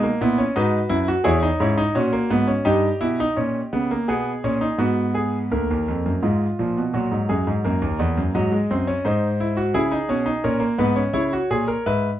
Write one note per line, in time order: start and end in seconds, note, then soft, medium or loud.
0.00 0.21 A#3 medium
0.00 0.54 D#5 medium
0.21 0.43 A#2 medium
0.21 0.39 B3 medium
0.21 0.43 E4 medium
0.38 0.56 C#4 medium
0.56 0.78 G#2 medium
0.56 0.77 D#4 medium
0.56 1.07 F#4 medium
0.56 1.24 B4 medium
0.89 1.12 F#2 medium
0.89 1.07 E4 medium
1.08 1.25 F#4 loud
1.24 1.47 E2 medium
1.24 1.42 E4 loud
1.24 1.46 G#4 medium
1.24 2.61 C#5 medium
1.43 1.60 D#4 medium
1.60 1.82 G#2 medium
1.60 1.78 C#4 medium
1.60 1.83 E4 medium
1.78 1.95 D#4 loud
1.95 2.17 A#2 medium
1.95 2.13 C#4 medium
1.95 2.63 F#4 medium
2.13 2.30 A#3 medium
2.30 2.52 G#2 medium
2.30 2.48 B3 medium
2.47 2.65 C#4 medium
2.65 2.87 G2 medium
2.65 2.87 D#4 medium
2.65 4.04 G4 medium
2.65 5.48 D#5 medium
3.01 3.23 B2 medium
3.01 3.18 E4 medium
3.20 3.37 D#4 loud
3.37 3.59 A#2 medium
3.37 3.59 C#4 medium
3.73 3.95 C#3 medium
3.73 3.90 B3 medium
3.91 4.08 A#3 medium
4.08 4.30 B2 medium
4.08 4.31 B3 medium
4.08 4.77 G#4 medium
4.44 4.66 A#2 medium
4.44 4.61 C#4 medium
4.61 4.79 D#4 medium
4.78 5.49 G#2 medium
4.78 5.49 B3 medium
4.78 5.02 F#4 medium
5.15 5.37 G#4 medium
5.52 5.69 D2 medium
5.52 6.22 A#3 medium
5.52 6.22 A#4 medium
5.71 5.88 D#2 medium
5.88 6.06 F2 medium
6.06 6.23 F#2 medium
6.22 6.45 G#2 medium
6.22 6.45 G#3 medium
6.22 6.92 F4 medium
6.59 6.77 A#2 medium
6.59 6.81 F3 medium
6.78 6.95 B2 medium
6.94 7.11 A#2 medium
6.94 7.63 F#3 medium
6.94 7.16 F#4 medium
7.12 7.29 G#2 medium
7.29 7.47 F#2 medium
7.29 7.51 G#4 medium
7.47 7.65 G#2 medium
7.64 7.82 F#2 medium
7.64 8.33 A#3 medium
7.64 8.33 A#4 medium
7.82 8.00 D#2 medium
7.99 8.17 E2 medium
8.17 8.35 F#2 medium
8.34 8.57 G#2 medium
8.34 8.52 F#3 medium
8.34 9.03 D#5 medium
8.52 8.70 G#3 medium
8.71 8.92 F#2 medium
8.71 8.88 C4 medium
8.87 9.05 C#4 medium
9.05 9.73 G#2 medium
9.05 9.27 D#4 medium
9.05 9.73 C5 medium
9.40 9.58 E4 medium
9.57 9.74 F#4 medium
9.74 9.96 C#3 medium
9.74 9.92 E4 medium
9.74 10.42 G#4 medium
9.92 10.09 D#4 medium
10.09 10.31 B2 medium
10.09 10.27 C#4 medium
10.26 10.44 D#4 medium
10.44 10.66 A#2 medium
10.44 10.61 C#4 medium
10.44 10.66 A#4 medium
10.60 10.78 A#3 medium
10.78 11.01 G#2 medium
10.78 10.96 B3 medium
10.78 11.01 B4 medium
10.96 11.13 C#4 medium
11.13 11.36 C#3 medium
11.13 11.31 E4 medium
11.13 11.83 C#5 medium
11.33 11.50 F#4 medium
11.51 11.72 A#2 medium
11.51 11.67 G#4 medium
11.68 11.85 A#4 medium
11.86 12.08 G#2 medium
11.86 12.08 B4 medium
11.86 12.08 E5 medium